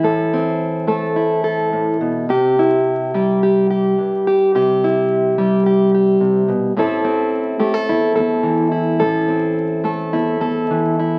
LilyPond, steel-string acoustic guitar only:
\new Staff \with { instrumentName = "Steel-string acoustic guitar" } { \time 4/4 \key a \minor \tempo 4 = 107 << { <c' e' a'>8 c'4 a'8 e'8 a'4. | g'8 e'4 g'8 g'8 g'4 g'8 | g'8 e'4 g'8 g'8 g'4. | <a c' e' a'>8 c'4 g'16 a'16 e'8 a'4 e'8 |
a'8 c'4 a'8 e'8 a'4 e'8 | } \\ { a,4. a4. a,8 b,8 | c4. g4. g,4 | c4. g4. c8 b,8 | a,4. a4. e4 |
a,4. a4. e4 | } >> }